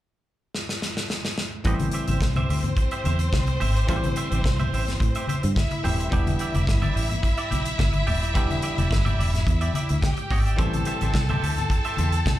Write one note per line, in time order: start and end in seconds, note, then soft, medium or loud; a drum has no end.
0.55 snare medium
0.69 snare medium
0.82 snare medium
0.97 snare medium
1.10 snare medium
1.25 snare medium
1.38 snare medium
1.64 1.88 A1 loud
1.64 3.84 E3 medium
1.64 3.84 G3 medium
1.64 3.85 A3 medium
1.64 5.52 C4 medium
1.64 3.85 C4 medium
1.64 1.86 G4 medium
1.64 3.85 G4 medium
1.64 5.52 C5 medium
1.64 1.86 C5 medium
1.64 1.87 E5 medium
1.64 kick medium
1.64 closed hi-hat medium
1.64 muted conga soft
1.79 closed hi-hat soft
1.79 high conga medium
1.91 2.05 G4 medium
1.91 2.05 C5 medium
1.91 2.05 E5 medium
1.91 closed hi-hat medium
2.08 2.19 A1 medium
2.08 2.19 G4 soft
2.08 2.19 C5 soft
2.08 2.18 E5 medium
2.08 closed hi-hat soft
2.08 high conga medium
2.21 2.44 C2 medium
2.21 muted clean electric guitar stroke soft
2.21 kick loud
2.21 snare loud
2.36 2.48 G4 medium
2.36 2.49 C5 medium
2.36 2.49 E5 medium
2.36 closed hi-hat soft
2.36 high conga medium
2.36 low conga medium
2.49 2.72 D2 medium
2.49 2.61 G4 medium
2.49 2.61 C5 medium
2.49 2.61 E5 medium
2.49 open hi-hat medium
2.49 muted conga soft
2.64 muted clean electric guitar stroke soft
2.64 closed hi-hat soft
2.64 low conga medium
2.77 muted clean electric guitar stroke soft
2.77 kick medium
2.77 closed hi-hat medium
2.77 muted conga soft
2.91 3.03 G4 medium
2.91 3.02 C5 medium
2.91 3.02 E5 medium
2.91 closed hi-hat soft
3.04 3.28 E2 medium
3.04 3.20 G4 medium
3.04 3.19 C5 medium
3.04 3.19 E5 medium
3.04 closed hi-hat medium
3.04 high conga medium
3.19 muted clean electric guitar stroke soft
3.19 closed hi-hat soft
3.33 3.56 C2 medium
3.33 muted clean electric guitar stroke soft
3.33 kick loud
3.33 snare loud
3.33 muted conga soft
3.33 high conga medium
3.47 muted clean electric guitar stroke soft
3.47 closed hi-hat soft
3.47 high conga soft
3.60 3.84 G#1 medium
3.60 3.75 G4 medium
3.60 3.75 C5 medium
3.60 3.75 E5 medium
3.60 open hi-hat medium
3.60 muted conga soft
3.60 low conga medium
3.76 3.86 G4 soft
3.76 3.86 C5 medium
3.76 3.86 E5 medium
3.76 closed hi-hat soft
3.87 4.12 A1 loud
3.87 5.79 E3 medium
3.87 5.80 G3 medium
3.87 5.80 A3 medium
3.87 5.81 C4 medium
3.87 3.96 F4 medium
3.87 4.03 G4 medium
3.87 4.04 C5 medium
3.87 4.04 E5 medium
3.87 kick loud
3.87 closed hi-hat medium
3.87 muted conga soft
3.96 5.83 G4 medium
4.04 closed hi-hat soft
4.04 high conga medium
4.16 4.28 G4 medium
4.16 4.28 C5 medium
4.16 4.29 E5 medium
4.16 closed hi-hat medium
4.31 4.42 A1 loud
4.31 4.42 G4 soft
4.31 4.42 C5 soft
4.31 4.41 E5 medium
4.31 closed hi-hat soft
4.31 high conga medium
4.44 4.67 C2 medium
4.44 muted clean electric guitar stroke soft
4.44 kick medium
4.44 snare loud
4.44 muted conga soft
4.59 4.72 G4 medium
4.59 4.73 C5 medium
4.59 4.72 E5 medium
4.59 closed hi-hat soft
4.59 high conga medium
4.59 low conga medium
4.73 4.95 A1 medium
4.73 4.84 G4 medium
4.73 4.85 C5 medium
4.73 4.85 E5 medium
4.73 open hi-hat medium
4.73 muted conga soft
4.88 muted clean electric guitar stroke soft
4.88 snare soft
4.88 closed hi-hat soft
4.88 low conga medium
5.00 5.23 A2 medium
5.00 muted clean electric guitar stroke soft
5.00 kick loud
5.00 closed hi-hat medium
5.15 5.26 G4 medium
5.15 5.26 C5 medium
5.15 5.26 E5 medium
5.15 closed hi-hat soft
5.27 5.43 G4 medium
5.27 5.43 C5 medium
5.27 5.42 E5 medium
5.27 closed hi-hat medium
5.27 muted conga soft
5.27 high conga medium
5.43 5.54 G2 medium
5.43 muted clean electric guitar stroke soft
5.43 closed hi-hat soft
5.56 6.11 E4 medium
5.56 6.11 E5 medium
5.56 muted clean electric guitar stroke soft
5.56 kick loud
5.56 snare loud
5.56 high conga medium
5.71 muted clean electric guitar stroke soft
5.71 closed hi-hat soft
5.71 high conga soft
5.83 6.07 D#1 medium
5.83 6.09 E3 soft
5.83 6.10 G3 soft
5.83 6.12 A3 soft
5.83 6.12 C4 soft
5.83 5.99 G4 medium
5.83 6.12 G4 medium
5.83 5.99 C5 medium
5.83 5.98 E5 medium
5.83 open hi-hat medium
5.83 muted conga soft
5.83 low conga medium
5.99 6.10 G4 soft
5.99 6.10 C5 soft
5.99 6.09 E5 medium
5.99 closed hi-hat soft
6.10 6.35 E1 loud
6.10 8.30 E3 medium
6.10 8.31 G3 medium
6.10 8.31 B3 medium
6.10 8.31 D4 medium
6.10 9.99 E4 medium
6.10 6.27 G4 medium
6.10 8.32 G4 medium
6.10 6.27 D5 medium
6.10 9.99 E5 medium
6.10 6.28 E5 medium
6.10 kick medium
6.10 closed hi-hat medium
6.10 muted conga soft
6.27 closed hi-hat medium
6.27 high conga medium
6.39 6.52 G4 medium
6.39 6.52 D5 medium
6.39 6.52 E5 medium
6.39 closed hi-hat medium
6.54 6.66 E1 medium
6.54 6.65 G4 medium
6.54 6.65 D5 medium
6.54 6.65 E5 medium
6.54 closed hi-hat soft
6.54 high conga medium
6.67 6.90 G1 medium
6.67 muted clean electric guitar stroke soft
6.67 kick loud
6.67 snare loud
6.82 6.94 G4 medium
6.82 6.95 D5 medium
6.82 6.95 E5 medium
6.82 closed hi-hat soft
6.82 high conga medium
6.82 low conga medium
6.95 7.19 A1 medium
6.95 7.07 G4 medium
6.95 7.07 D5 medium
6.95 7.07 E5 medium
6.95 open hi-hat medium
6.95 muted conga soft
7.10 muted clean electric guitar stroke soft
7.10 closed hi-hat soft
7.10 low conga medium
7.23 muted clean electric guitar stroke soft
7.23 kick medium
7.23 closed hi-hat medium
7.37 7.49 G4 soft
7.37 7.48 D5 medium
7.37 7.48 E5 medium
7.37 closed hi-hat soft
7.50 7.75 B1 medium
7.50 7.66 G4 medium
7.50 7.65 D5 medium
7.50 7.64 E5 medium
7.50 closed hi-hat medium
7.50 high conga medium
7.65 muted clean electric guitar stroke soft
7.65 closed hi-hat medium
7.78 8.02 G1 medium
7.78 muted clean electric guitar stroke soft
7.78 kick loud
7.78 snare loud
7.78 muted conga soft
7.78 high conga medium
7.93 muted clean electric guitar stroke soft
7.93 closed hi-hat soft
7.93 high conga medium
8.07 8.36 D#1 medium
8.07 8.21 G4 medium
8.07 8.21 D5 medium
8.07 8.20 E5 medium
8.07 open hi-hat medium
8.07 muted conga soft
8.07 low conga medium
8.21 8.32 G4 medium
8.21 8.32 D5 soft
8.21 8.32 E5 medium
8.21 closed hi-hat soft
8.34 8.58 E1 loud
8.34 10.54 E3 medium
8.34 10.54 G3 medium
8.34 10.55 B3 medium
8.34 10.55 D4 medium
8.34 8.49 G4 medium
8.34 10.55 G4 medium
8.34 8.50 D5 medium
8.34 8.50 E5 medium
8.34 kick medium
8.34 closed hi-hat medium
8.34 muted conga soft
8.50 closed hi-hat soft
8.50 high conga medium
8.62 8.75 G4 medium
8.62 8.75 D5 medium
8.62 8.75 E5 medium
8.62 closed hi-hat medium
8.62 muted conga soft
8.78 8.89 E1 medium
8.78 8.89 G4 soft
8.78 8.89 D5 medium
8.78 8.88 E5 medium
8.78 closed hi-hat soft
8.78 high conga medium
8.90 9.14 G1 medium
8.90 muted clean electric guitar stroke soft
8.90 kick medium
8.90 snare loud
9.05 9.18 G4 medium
9.05 9.18 D5 medium
9.05 9.18 E5 medium
9.05 closed hi-hat soft
9.05 high conga medium
9.05 low conga medium
9.19 9.42 E1 medium
9.19 9.30 G4 medium
9.19 9.31 D5 medium
9.19 9.31 E5 medium
9.19 open hi-hat medium
9.33 muted clean electric guitar stroke soft
9.33 snare soft
9.33 closed hi-hat soft
9.33 low conga medium
9.46 9.70 E2 loud
9.46 muted clean electric guitar stroke soft
9.46 kick medium
9.46 closed hi-hat medium
9.46 muted conga soft
9.61 9.72 G4 soft
9.61 9.72 D5 medium
9.61 9.71 E5 medium
9.61 closed hi-hat soft
9.74 9.89 G4 medium
9.74 9.89 D5 medium
9.74 9.89 E5 medium
9.74 closed hi-hat medium
9.74 muted conga soft
9.74 high conga medium
9.89 10.01 D2 medium
9.89 muted clean electric guitar stroke soft
9.89 closed hi-hat soft
10.02 10.57 G4 medium
10.02 10.57 G5 medium
10.02 muted clean electric guitar stroke soft
10.02 kick loud
10.02 snare loud
10.02 muted conga soft
10.02 high conga medium
10.17 muted clean electric guitar stroke soft
10.17 closed hi-hat soft
10.17 high conga soft
10.30 10.54 G#1 medium
10.30 10.45 G4 medium
10.30 10.45 D5 medium
10.30 10.44 E5 medium
10.30 kick loud
10.30 open hi-hat medium
10.30 low conga medium
10.46 10.56 G4 soft
10.46 10.56 D5 soft
10.46 10.56 E5 medium
10.46 closed hi-hat soft
10.56 10.81 A1 loud
10.56 12.39 E3 medium
10.56 12.39 G3 medium
10.56 12.39 A3 medium
10.56 12.39 C4 medium
10.56 10.73 G4 medium
10.56 12.39 G4 medium
10.56 12.39 A4 medium
10.56 10.73 C5 medium
10.56 10.74 E5 medium
10.56 12.39 G5 medium
10.56 12.39 A5 medium
10.56 12.39 C6 medium
10.56 12.39 E6 medium
10.56 kick loud
10.56 closed hi-hat medium
10.74 closed hi-hat medium
10.74 high conga medium
10.85 10.98 G4 medium
10.85 10.98 C5 medium
10.85 10.98 E5 medium
10.85 closed hi-hat medium
10.85 muted conga soft
11.01 11.12 A1 medium
11.01 11.12 G4 soft
11.01 11.12 C5 medium
11.01 11.12 E5 medium
11.01 closed hi-hat soft
11.01 high conga medium
11.14 11.37 C2 loud
11.14 muted clean electric guitar stroke soft
11.14 kick medium
11.14 snare loud
11.14 muted conga soft
11.29 11.42 G4 medium
11.29 11.42 C5 medium
11.29 11.42 E5 medium
11.29 closed hi-hat soft
11.29 high conga medium
11.29 low conga medium
11.42 11.65 D2 medium
11.42 11.54 G4 medium
11.42 11.54 C5 medium
11.42 11.55 E5 medium
11.42 open hi-hat medium
11.42 muted conga soft
11.57 muted clean electric guitar stroke soft
11.57 closed hi-hat soft
11.57 low conga medium
11.70 muted clean electric guitar stroke soft
11.70 kick loud
11.70 closed hi-hat medium
11.70 muted conga soft
11.85 11.96 G4 medium
11.85 11.95 C5 medium
11.85 11.95 E5 medium
11.85 closed hi-hat soft
11.97 12.21 E2 medium
11.97 12.13 G4 medium
11.97 12.12 C5 medium
11.97 12.12 E5 medium
11.97 closed hi-hat medium
11.97 high conga medium
12.12 muted clean electric guitar stroke soft
12.12 closed hi-hat soft
12.26 12.39 C2 loud
12.26 muted clean electric guitar stroke soft
12.26 kick loud
12.26 snare loud
12.26 high conga medium